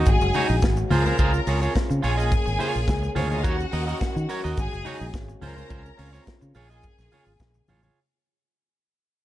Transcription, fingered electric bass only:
0.07 G#1
0.21 F#1
0.50 A#1
0.91 C#2
1.19 C#2
1.47 C#2
1.75 muted fingered electric bass stroke
1.90 C#3
2.04 A#1
2.47 G#1
2.76 A#1
2.88 C#2
3.17 D2
3.45 D#2
3.73 D#2
4.01 muted fingered electric bass stroke
4.16 D#3
4.45 D#2
4.58 G#1
4.73 F#1
5.01 A#1
5.14 G#1
5.43 C#2
5.71 C#2
5.99 C#2
6.28 muted fingered electric bass stroke
6.42 C#3
6.55 A#1
6.99 A#1
7.27 G#1
7.40 A#1
7.69 A1

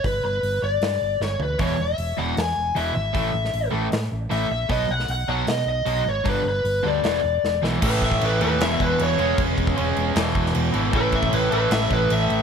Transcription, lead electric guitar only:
0.05 B4
0.25 B4
0.64 D5
1.23 C#5
1.42 B4
1.61 C#5
1.81 E5
2.18 F#5
2.38 G#5
2.77 E5
2.95 E5
4.32 E5
4.52 E5
4.71 D#5
4.91 F#5
5.11 F#5
5.29 F#5
5.50 D#5
5.69 D#5
6.09 C#5
6.29 B4
6.48 B4
6.87 D5
7.84 B4
8.04 E5
8.25 B4
8.43 B4
8.62 E5
8.81 B4
9.02 C#5
10.96 B4
11.15 E5
11.34 B4
11.53 B4
11.73 E5
11.93 B4
12.12 E5

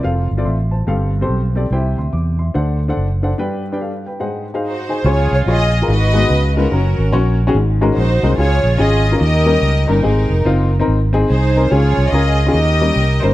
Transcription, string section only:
4.65 D#4 F#4 C5
5.06 F4 G#4 C#5
5.34 C#5
5.48 G#4 D#5
5.90 F#4 B4 D#5
6.57 C#4 F#4 A#4
7.96 D#4 F#4 C5
8.38 F4 G#4 C#5
8.80 G#4 D#5
9.21 G4 A#4 D#5
9.89 D#4 A#4
11.29 D#4 G#4 C5
11.70 F4 G#4 C#5
12.08 G#4 D#5
12.51 G4 A#4 D#5
13.20 C5

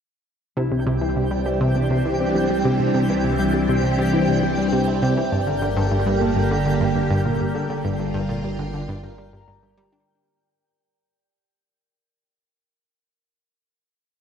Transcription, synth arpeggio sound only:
0.57 C3
0.72 C3
0.87 C3
1.01 E3
1.16 C3
1.31 G3
1.46 G3
1.61 C3
1.76 C3
1.91 C3
2.05 E3
2.20 C3
2.35 G3
2.50 G3
2.65 C3
2.80 C3
2.94 C3
3.09 E3
3.24 C3
3.39 G3
3.54 G3
3.69 C3
3.84 C3
3.98 C3
4.13 E3
4.28 C3
4.43 G3
4.58 G3
4.73 C3
4.88 C3
5.02 C3
5.17 E3
5.32 G2
5.47 D3
5.62 D3
5.77 G2
5.92 G2
6.06 G2
6.21 A#2
6.36 G2
6.51 D3
6.66 D3
6.81 G2
6.96 G2
7.10 G2
7.25 A#2
7.40 G2
7.55 D3
7.70 D3
7.84 G2
7.99 G2
8.14 G2
8.29 A#2
8.44 G2
8.59 D3
8.74 D3
8.88 G2
9.03 G2
9.18 G3
9.33 G2
9.48 G2
9.63 G2
9.77 G3
9.92 D4

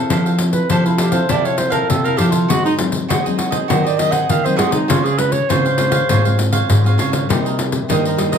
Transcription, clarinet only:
0.53 B4
0.70 C5
0.85 E4
0.99 G4
1.12 C5
1.30 D5
1.45 C#5
1.58 C5
1.72 A#4
1.89 A4
2.04 A#4
2.17 G4
2.31 F4
2.50 F#4
2.65 D#4
3.85 D5
3.98 D#5
4.11 F#5
4.30 F5
4.45 C5
4.58 G#4
4.72 D#4
4.90 F4
5.04 G#4
5.19 B4
5.32 C#5
5.50 C5

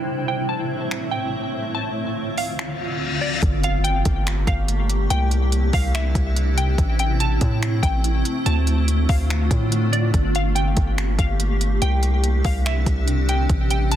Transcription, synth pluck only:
0.28 G5
0.49 A5
1.11 G5
1.75 A5
2.38 F5
3.21 D5
3.64 F5
3.84 G5
4.48 F5
5.10 G5
5.74 F5
5.95 E5
6.58 G5
7.00 G5
7.20 A5
7.83 G5
8.46 A5
9.09 F5
9.93 D5
10.36 F5
10.55 G5
11.19 F5
11.82 G5
12.45 F5
12.66 E5
13.29 G5
13.71 G5
13.92 A5

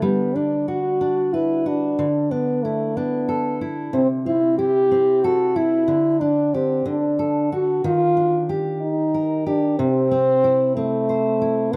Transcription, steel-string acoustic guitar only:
Already playing: D3 D4
0.02 G3
0.36 D4
0.68 F#4
1.01 D4
1.34 B4
1.66 F#4
1.99 D3
2.31 D4
2.65 E4
2.97 D4
3.29 A4
3.61 E4
3.93 C3
4.26 C4
4.59 E4
4.91 C4
5.24 A4
5.56 E4
5.88 D3
6.21 D4
6.54 G4
6.86 D3
7.19 A4
7.52 F#4
7.84 D#3
8.17 D4
8.49 G4
9.14 A#4
9.46 G4
9.79 C3
10.11 C4
10.44 E4
10.77 C4
11.09 C5
11.42 E4
11.73 D3

